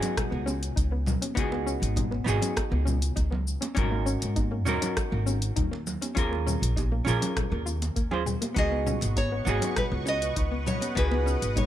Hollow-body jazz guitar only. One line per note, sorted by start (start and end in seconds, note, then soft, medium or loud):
0.00 1.32 B3 medium
0.00 1.33 D#4 medium
0.00 1.34 F#4 medium
0.00 1.34 G#4 loud
1.35 2.22 B3 medium
1.35 2.23 D#4 medium
1.35 2.24 F#4 medium
1.35 2.24 G#4 medium
2.24 3.72 B3 medium
2.24 3.73 D#4 medium
2.24 3.73 F#4 medium
2.24 3.74 G#4 medium
3.75 4.62 C#4 medium
3.75 4.63 D#4 medium
3.75 4.64 F#4 medium
3.75 4.64 A#4 medium
4.65 5.84 C#4 medium
4.65 5.85 D#4 medium
4.65 5.85 F#4 medium
4.65 5.86 A#4 loud
6.15 7.02 C#4 medium
6.15 7.03 F4 medium
6.15 7.03 G#4 medium
6.15 7.04 A#4 medium
7.05 8.08 C#4 medium
7.05 8.09 F4 medium
7.05 8.10 G#4 medium
7.05 8.10 A#4 loud
8.11 8.22 C#4 medium
8.11 8.22 F4 medium
8.11 8.22 G#4 medium
8.11 8.23 C5 medium
8.54 9.42 B3 medium
8.54 9.43 D#4 medium
8.54 9.43 F#4 medium
8.54 9.44 G#4 medium
9.45 10.92 B3 medium
9.45 10.93 D#4 medium
9.45 10.94 F#4 medium
9.45 10.94 G#4 medium
10.95 11.66 B3 medium
10.95 11.66 D#4 medium
10.95 11.66 F#4 medium
10.95 11.66 G#4 medium